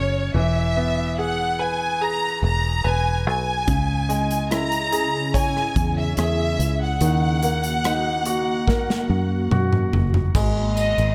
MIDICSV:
0, 0, Header, 1, 6, 480
1, 0, Start_track
1, 0, Tempo, 833333
1, 200, Time_signature, 4, 2, 24, 8
1, 6421, End_track
2, 0, Start_track
2, 0, Title_t, "Violin section"
2, 0, Program_c, 0, 48
2, 0, Note_on_c, 0, 73, 82
2, 204, Note_off_c, 0, 73, 0
2, 210, Note_on_c, 0, 76, 77
2, 662, Note_off_c, 0, 76, 0
2, 691, Note_on_c, 0, 78, 77
2, 925, Note_off_c, 0, 78, 0
2, 927, Note_on_c, 0, 80, 81
2, 1163, Note_off_c, 0, 80, 0
2, 1167, Note_on_c, 0, 82, 87
2, 1403, Note_off_c, 0, 82, 0
2, 1410, Note_on_c, 0, 82, 80
2, 1629, Note_off_c, 0, 82, 0
2, 1647, Note_on_c, 0, 80, 83
2, 1883, Note_off_c, 0, 80, 0
2, 1890, Note_on_c, 0, 80, 81
2, 2582, Note_off_c, 0, 80, 0
2, 2616, Note_on_c, 0, 82, 90
2, 3087, Note_on_c, 0, 80, 91
2, 3088, Note_off_c, 0, 82, 0
2, 3420, Note_off_c, 0, 80, 0
2, 3452, Note_on_c, 0, 76, 78
2, 3566, Note_off_c, 0, 76, 0
2, 3573, Note_on_c, 0, 76, 82
2, 3903, Note_off_c, 0, 76, 0
2, 3932, Note_on_c, 0, 78, 83
2, 5463, Note_off_c, 0, 78, 0
2, 6201, Note_on_c, 0, 75, 73
2, 6421, Note_off_c, 0, 75, 0
2, 6421, End_track
3, 0, Start_track
3, 0, Title_t, "Grand piano"
3, 0, Program_c, 1, 0
3, 0, Control_c, 1, 64, 127
3, 0, Note_on_c, 1, 54, 47
3, 0, Note_on_c, 1, 61, 47
3, 177, Note_off_c, 1, 54, 0
3, 187, Note_off_c, 1, 61, 0
3, 197, Note_on_c, 1, 52, 56
3, 208, Control_c, 1, 64, 0
3, 294, Control_c, 1, 64, 127
3, 442, Note_on_c, 1, 59, 48
3, 682, Note_on_c, 1, 68, 47
3, 918, Note_on_c, 1, 71, 51
3, 1151, Note_off_c, 1, 68, 0
3, 1159, Note_on_c, 1, 68, 47
3, 1378, Note_off_c, 1, 59, 0
3, 1629, Note_off_c, 1, 71, 0
3, 1638, Note_on_c, 1, 71, 52
3, 2095, Note_off_c, 1, 52, 0
3, 2096, Note_off_c, 1, 68, 0
3, 2104, Note_off_c, 1, 71, 0
3, 2117, Note_on_c, 1, 49, 63
3, 2127, Control_c, 1, 64, 0
3, 2235, Control_c, 1, 64, 127
3, 2356, Note_on_c, 1, 56, 50
3, 2596, Note_on_c, 1, 64, 50
3, 2836, Note_on_c, 1, 68, 52
3, 3077, Note_on_c, 1, 73, 51
3, 3295, Note_off_c, 1, 56, 0
3, 3535, Note_off_c, 1, 64, 0
3, 3550, Note_off_c, 1, 68, 0
3, 3559, Note_on_c, 1, 68, 49
3, 4015, Note_off_c, 1, 49, 0
3, 4015, Note_off_c, 1, 73, 0
3, 4025, Note_off_c, 1, 68, 0
3, 4039, Note_on_c, 1, 51, 59
3, 4047, Control_c, 1, 64, 0
3, 4152, Control_c, 1, 64, 127
3, 4280, Note_on_c, 1, 58, 53
3, 4523, Note_on_c, 1, 63, 50
3, 4760, Note_on_c, 1, 66, 51
3, 4997, Note_on_c, 1, 70, 53
3, 5217, Note_off_c, 1, 58, 0
3, 5458, Note_off_c, 1, 63, 0
3, 5472, Note_off_c, 1, 66, 0
3, 5481, Note_on_c, 1, 66, 53
3, 5935, Note_off_c, 1, 70, 0
3, 5936, Note_off_c, 1, 51, 0
3, 5946, Note_off_c, 1, 66, 0
3, 5966, Note_on_c, 1, 56, 60
3, 5968, Control_c, 1, 64, 0
3, 6069, Control_c, 1, 64, 127
3, 6421, Note_off_c, 1, 56, 0
3, 6421, End_track
4, 0, Start_track
4, 0, Title_t, "Ambient pad"
4, 0, Program_c, 2, 92
4, 2120, Note_on_c, 2, 68, 83
4, 2122, Note_on_c, 2, 49, 77
4, 2123, Note_on_c, 2, 61, 73
4, 2123, Note_on_c, 2, 64, 73
4, 4021, Note_off_c, 2, 68, 0
4, 4022, Note_off_c, 2, 49, 0
4, 4022, Note_off_c, 2, 61, 0
4, 4022, Note_off_c, 2, 64, 0
4, 4030, Note_on_c, 2, 66, 86
4, 4033, Note_on_c, 2, 58, 79
4, 5936, Note_off_c, 2, 66, 0
4, 5937, Note_off_c, 2, 58, 0
4, 5963, Note_on_c, 2, 59, 77
4, 5965, Note_on_c, 2, 56, 83
4, 5966, Note_on_c, 2, 51, 84
4, 6421, Note_off_c, 2, 51, 0
4, 6421, Note_off_c, 2, 56, 0
4, 6421, Note_off_c, 2, 59, 0
4, 6421, End_track
5, 0, Start_track
5, 0, Title_t, "Fingered electric bass"
5, 0, Program_c, 3, 33
5, 0, Note_on_c, 3, 30, 62
5, 182, Note_off_c, 3, 30, 0
5, 198, Note_on_c, 3, 28, 87
5, 1376, Note_off_c, 3, 28, 0
5, 1397, Note_on_c, 3, 28, 79
5, 1621, Note_off_c, 3, 28, 0
5, 1639, Note_on_c, 3, 28, 82
5, 1882, Note_off_c, 3, 28, 0
5, 1882, Note_on_c, 3, 35, 77
5, 2104, Note_off_c, 3, 35, 0
5, 2121, Note_on_c, 3, 37, 96
5, 3177, Note_off_c, 3, 37, 0
5, 3318, Note_on_c, 3, 40, 91
5, 3542, Note_off_c, 3, 40, 0
5, 3557, Note_on_c, 3, 40, 84
5, 3781, Note_off_c, 3, 40, 0
5, 3797, Note_on_c, 3, 37, 82
5, 4022, Note_off_c, 3, 37, 0
5, 4037, Note_on_c, 3, 39, 94
5, 5095, Note_off_c, 3, 39, 0
5, 5239, Note_on_c, 3, 42, 84
5, 5462, Note_off_c, 3, 42, 0
5, 5481, Note_on_c, 3, 42, 87
5, 5704, Note_off_c, 3, 42, 0
5, 5722, Note_on_c, 3, 30, 75
5, 5944, Note_off_c, 3, 30, 0
5, 5960, Note_on_c, 3, 32, 100
5, 6297, Note_off_c, 3, 32, 0
5, 6324, Note_on_c, 3, 32, 83
5, 6421, Note_off_c, 3, 32, 0
5, 6421, End_track
6, 0, Start_track
6, 0, Title_t, "Drums"
6, 2118, Note_on_c, 9, 42, 84
6, 2119, Note_on_c, 9, 36, 105
6, 2175, Note_off_c, 9, 42, 0
6, 2176, Note_off_c, 9, 36, 0
6, 2360, Note_on_c, 9, 42, 59
6, 2418, Note_off_c, 9, 42, 0
6, 2481, Note_on_c, 9, 42, 49
6, 2538, Note_off_c, 9, 42, 0
6, 2599, Note_on_c, 9, 42, 63
6, 2604, Note_on_c, 9, 37, 88
6, 2657, Note_off_c, 9, 42, 0
6, 2662, Note_off_c, 9, 37, 0
6, 2718, Note_on_c, 9, 42, 46
6, 2775, Note_off_c, 9, 42, 0
6, 2836, Note_on_c, 9, 42, 62
6, 2894, Note_off_c, 9, 42, 0
6, 3077, Note_on_c, 9, 36, 71
6, 3082, Note_on_c, 9, 42, 73
6, 3135, Note_off_c, 9, 36, 0
6, 3139, Note_off_c, 9, 42, 0
6, 3207, Note_on_c, 9, 37, 29
6, 3265, Note_off_c, 9, 37, 0
6, 3318, Note_on_c, 9, 36, 89
6, 3319, Note_on_c, 9, 42, 66
6, 3376, Note_off_c, 9, 36, 0
6, 3377, Note_off_c, 9, 42, 0
6, 3554, Note_on_c, 9, 42, 75
6, 3564, Note_on_c, 9, 37, 105
6, 3612, Note_off_c, 9, 42, 0
6, 3621, Note_off_c, 9, 37, 0
6, 3801, Note_on_c, 9, 42, 63
6, 3859, Note_off_c, 9, 42, 0
6, 4036, Note_on_c, 9, 42, 81
6, 4094, Note_off_c, 9, 42, 0
6, 4277, Note_on_c, 9, 42, 60
6, 4335, Note_off_c, 9, 42, 0
6, 4398, Note_on_c, 9, 42, 46
6, 4456, Note_off_c, 9, 42, 0
6, 4518, Note_on_c, 9, 42, 61
6, 4523, Note_on_c, 9, 37, 89
6, 4576, Note_off_c, 9, 42, 0
6, 4581, Note_off_c, 9, 37, 0
6, 4754, Note_on_c, 9, 42, 68
6, 4812, Note_off_c, 9, 42, 0
6, 4997, Note_on_c, 9, 36, 74
6, 5005, Note_on_c, 9, 38, 46
6, 5055, Note_off_c, 9, 36, 0
6, 5063, Note_off_c, 9, 38, 0
6, 5128, Note_on_c, 9, 38, 50
6, 5185, Note_off_c, 9, 38, 0
6, 5480, Note_on_c, 9, 47, 72
6, 5538, Note_off_c, 9, 47, 0
6, 5602, Note_on_c, 9, 45, 69
6, 5659, Note_off_c, 9, 45, 0
6, 5722, Note_on_c, 9, 43, 89
6, 5779, Note_off_c, 9, 43, 0
6, 5841, Note_on_c, 9, 43, 81
6, 5899, Note_off_c, 9, 43, 0
6, 5961, Note_on_c, 9, 36, 124
6, 5961, Note_on_c, 9, 49, 97
6, 5966, Note_on_c, 9, 54, 54
6, 6018, Note_off_c, 9, 36, 0
6, 6019, Note_off_c, 9, 49, 0
6, 6023, Note_off_c, 9, 54, 0
6, 6202, Note_on_c, 9, 51, 49
6, 6204, Note_on_c, 9, 54, 45
6, 6260, Note_off_c, 9, 51, 0
6, 6262, Note_off_c, 9, 54, 0
6, 6326, Note_on_c, 9, 51, 42
6, 6383, Note_off_c, 9, 51, 0
6, 6421, End_track
0, 0, End_of_file